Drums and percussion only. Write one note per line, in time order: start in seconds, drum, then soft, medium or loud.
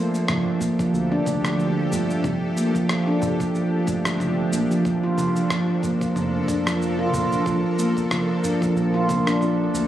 0.14 cabasa soft
0.28 cross-stick medium
0.28 low conga medium
0.28 udu medium
0.28 cabasa soft
0.61 kick medium
0.61 udu medium
0.61 cabasa medium
0.79 kick medium
0.79 cabasa soft
0.94 cabasa soft
1.26 kick medium
1.26 low conga medium
1.26 cabasa medium
1.45 cross-stick medium
1.45 cabasa soft
1.60 cabasa soft
1.92 udu medium
1.92 cabasa medium
2.10 cabasa soft
2.24 kick loud
2.24 low conga medium
2.24 cabasa soft
2.57 cabasa medium
2.75 kick medium
2.75 cabasa soft
2.89 cross-stick medium
2.89 cabasa soft
3.22 low conga medium
3.22 udu loud
3.22 cabasa medium
3.40 kick medium
3.40 cabasa soft
3.55 cabasa soft
3.87 kick loud
3.87 udu medium
3.87 cabasa medium
4.05 cross-stick medium
4.05 cabasa soft
4.20 low conga medium
4.20 cabasa soft
4.53 cabasa medium
4.71 cabasa soft
4.85 kick loud
4.85 cabasa soft
5.18 low conga medium
5.18 cabasa medium
5.36 cabasa soft
5.50 cross-stick medium
5.50 udu medium
5.50 cabasa soft
5.83 kick medium
5.83 udu loud
5.83 cabasa medium
6.01 kick medium
6.01 cabasa soft
6.16 low conga medium
6.16 cabasa soft
6.48 kick loud
6.48 cabasa medium
6.67 cross-stick medium
6.67 cabasa soft
6.82 cabasa soft
7.14 udu medium
7.14 low conga medium
7.14 cabasa medium
7.32 cabasa soft
7.46 kick loud
7.46 cabasa soft
7.79 cabasa medium
7.97 kick medium
7.97 cabasa soft
8.11 cross-stick medium
8.11 low conga medium
8.11 cabasa soft
8.44 udu medium
8.44 cabasa medium
8.62 kick medium
8.62 cabasa soft
8.77 cabasa soft
9.09 kick loud
9.09 low conga medium
9.09 udu medium
9.09 cabasa medium
9.27 cross-stick medium
9.27 cabasa soft
9.42 cabasa soft
9.75 cabasa medium